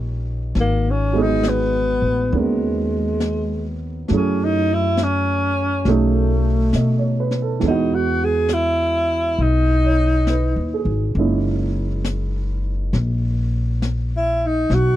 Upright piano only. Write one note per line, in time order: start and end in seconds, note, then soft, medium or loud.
0.00 0.52 G3 soft
0.00 0.54 A#3 soft
0.00 0.56 C#4 soft
0.00 0.58 D#4 soft
1.12 4.06 F#3 medium
1.12 4.10 G#3 soft
1.12 2.31 B3 soft
1.12 4.11 D#4 medium
1.17 4.11 G#4 medium
2.33 4.10 B3 soft
2.33 4.09 C#4 soft
2.33 4.10 F#4 soft
2.33 4.11 A#4 soft
4.08 5.85 F#3 soft
4.08 5.86 A3 soft
4.08 5.86 C#4 soft
4.08 5.87 E4 soft
4.13 5.87 G#4 medium
5.87 7.63 F#3 medium
5.87 7.64 A3 soft
5.87 7.64 C#4 soft
5.87 7.64 D#4 soft
5.87 7.64 G#4 medium
6.75 7.16 D#5 soft
6.98 7.35 C#5 soft
7.20 7.47 B4 soft
7.42 7.73 A4 medium
7.60 11.15 E3 medium
7.60 11.16 G#3 soft
7.65 11.18 B3 soft
7.65 11.19 D#5 soft
7.70 11.21 F#4 medium
9.85 10.47 C#5 soft
10.30 10.99 B4 soft
10.74 11.36 G#4 medium
11.18 14.72 G#3 soft
11.18 14.72 A#3 soft
11.18 14.72 C#4 soft
11.18 14.72 D#4 soft
11.18 14.72 E4 medium